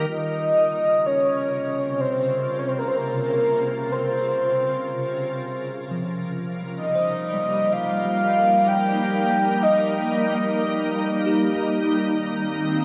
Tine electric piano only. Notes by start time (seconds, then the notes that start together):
Already playing: G3
0.10 F4
5.91 F3
6.95 C5
7.34 G3
8.05 G3
8.39 A#4
11.26 G4